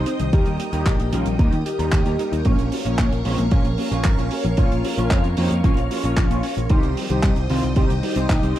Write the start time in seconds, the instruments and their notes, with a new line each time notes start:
Already playing: analog polysynth C4 D#4, string machine C5 D#5 G5 D#6
0.06 synth arpeggio sound C4, closed hi-hat
0.19 picked electric bass C2, synth arpeggio sound D#3, closed hi-hat
0.33 picked electric bass D#2, clean electric guitar G3 A#3 D#4 A#4, analog polysynth D#4 G4, string machine A#4 D#6, kick, closed hi-hat
0.46 picked electric bass D#2, synth arpeggio sound G3, closed hi-hat
0.60 synth arpeggio sound A#3, closed hi-hat
0.73 picked electric bass D#2, synth arpeggio sound D#3, clean electric guitar G3 A#3 D#4 A#4, analog polysynth D#4 G4, closed hi-hat
0.86 picked electric bass A#1, synth arpeggio sound G3, kick, clap, closed hi-hat
0.99 picked electric bass A#1, synth arpeggio sound A#3, closed hi-hat
1.12 picked electric bass A#1, synth arpeggio sound D#3, clean electric guitar G3 A#3 D#4 A#4, analog polysynth C#4 F4, closed hi-hat
1.26 picked electric bass A#1, synth arpeggio sound G3, closed hi-hat
1.39 picked electric bass D#2, clean electric guitar G3 A#3 D#4 A#4, synth arpeggio sound A#3, analog polysynth D#4 G4, kick, closed hi-hat
1.52 picked electric bass D#2, synth arpeggio sound D#3, closed hi-hat
1.66 analog polysynth D#4 G4, synth arpeggio sound G4, closed hi-hat
1.79 picked electric bass D#2, clean electric guitar G3 A#3 D#4 A#4, synth arpeggio sound G4, closed hi-hat
1.92 picked electric bass D#2, synth arpeggio sound D#3, kick, clap, closed hi-hat
2.05 picked electric bass D#2, clean electric guitar G3 A#3 D#4 A#4, synth arpeggio sound D#4, closed hi-hat
2.19 clean electric guitar G3 A#3 D#4 A#4, synth arpeggio sound D#4, closed hi-hat
2.32 picked electric bass D#2, synth arpeggio sound D#4, closed hi-hat
2.45 picked electric bass A#1, synth arpeggio sound F3, clean electric guitar A#3 C#4 F4 C#5, analog polysynth A#3 C#4, string machine C#5 F5 C#6, kick, closed hi-hat
2.59 picked electric bass A#1, synth arpeggio sound A#3, closed hi-hat
2.72 synth arpeggio sound C#4, open hi-hat
2.85 picked electric bass A#1, synth arpeggio sound F3, clean electric guitar A#3 C#4 F4 C#5, analog polysynth A#3 C#4, closed hi-hat
2.98 picked electric bass A#1, synth arpeggio sound A#3, kick, clap, closed hi-hat
3.12 picked electric bass A#1, synth arpeggio sound C#4, closed hi-hat
3.25 picked electric bass A#1, synth arpeggio sound F3, analog polysynth G#3 C4, clean electric guitar A#3 C#4 F4 C#5, open hi-hat
3.38 picked electric bass A#1, synth arpeggio sound A#3, closed hi-hat
3.51 picked electric bass A#1, clean electric guitar A#3 C#4 F4 C#5, analog polysynth A#3 C#4, synth arpeggio sound C#4, kick, closed hi-hat
3.65 picked electric bass A#1, synth arpeggio sound F3, closed hi-hat
3.78 synth arpeggio sound A#3, analog polysynth A#3 C#4, open hi-hat
3.91 picked electric bass A#1, clean electric guitar A#3 C#4 F4 C#5, synth arpeggio sound C#4, closed hi-hat
4.04 picked electric bass G#1, synth arpeggio sound F3, kick, clap, closed hi-hat
4.18 picked electric bass A#1, clean electric guitar A#3 C#4 F4 C#5, synth arpeggio sound A#3, closed hi-hat
4.31 synth arpeggio sound C#4, open hi-hat
4.44 picked electric bass A#1, synth arpeggio sound F3, closed hi-hat
4.57 picked electric bass A#1, synth arpeggio sound F3, clean electric guitar A#3 C#4 F4 C#5, analog polysynth C#4 F4, kick, closed hi-hat
4.71 picked electric bass A#1, synth arpeggio sound A#3, closed hi-hat
4.84 synth arpeggio sound C#4, open hi-hat
4.97 picked electric bass A#1, synth arpeggio sound F3, clean electric guitar A#3 C#4 F4 C#5, analog polysynth C#4 F4, closed hi-hat
5.11 picked electric bass F2, synth arpeggio sound A#3, kick, clap, closed hi-hat
5.24 picked electric bass F2, synth arpeggio sound C#4, closed hi-hat
5.37 picked electric bass F2, synth arpeggio sound F3, clean electric guitar A#3 C#4 F4 C#5, analog polysynth C4 D#4, open hi-hat
5.51 picked electric bass F2, synth arpeggio sound A#3, closed hi-hat
5.64 picked electric bass A#1, clean electric guitar A#3 C#4 F4 C#5, synth arpeggio sound C#4, analog polysynth C#4 F4, kick, closed hi-hat
5.77 picked electric bass A#1, synth arpeggio sound F3, closed hi-hat
5.90 synth arpeggio sound A#3, analog polysynth C#4 F4, open hi-hat
6.03 picked electric bass A#1, clean electric guitar A#3 C#4 F4 C#5, synth arpeggio sound C#4, closed hi-hat
6.17 picked electric bass A#1, synth arpeggio sound F3, kick, clap, closed hi-hat
6.30 picked electric bass A#1, clean electric guitar A#3 C#4 F4 C#5, synth arpeggio sound A#3, closed hi-hat
6.43 synth arpeggio sound C#4, open hi-hat
6.57 picked electric bass A#1, synth arpeggio sound F3, closed hi-hat
6.70 picked electric bass C2, synth arpeggio sound D#3, clean electric guitar G3 C4 D#4 C5, analog polysynth D#4 G4, string machine C5 D#5 G5 D#6, kick, closed hi-hat
6.83 picked electric bass C2, synth arpeggio sound G3, closed hi-hat
6.97 synth arpeggio sound C4, open hi-hat
7.10 picked electric bass C2, synth arpeggio sound D#3, clean electric guitar G3 C4 D#4 C5, analog polysynth D#4 G4, closed hi-hat
7.23 picked electric bass C2, synth arpeggio sound G3, kick, clap, closed hi-hat
7.36 picked electric bass C2, synth arpeggio sound C4, closed hi-hat
7.50 picked electric bass C2, synth arpeggio sound D#3, clean electric guitar G3 C4 D#4 C5, analog polysynth C4 F4, open hi-hat
7.63 picked electric bass C2, synth arpeggio sound G3, closed hi-hat
7.76 picked electric bass C2, clean electric guitar G3 C4 D#4 C5, synth arpeggio sound C4, analog polysynth D#4 G4, kick, closed hi-hat
7.90 picked electric bass C2, synth arpeggio sound D#3, closed hi-hat
8.03 synth arpeggio sound G3, analog polysynth D#4 G4, open hi-hat
8.16 picked electric bass C2, clean electric guitar G3 C4 D#4 C5, synth arpeggio sound C4, closed hi-hat
8.29 picked electric bass A#1, synth arpeggio sound D#3, kick, clap, closed hi-hat
8.42 picked electric bass C2, clean electric guitar G3 C4 D#4 C5, synth arpeggio sound G3, closed hi-hat
8.56 synth arpeggio sound C4, open hi-hat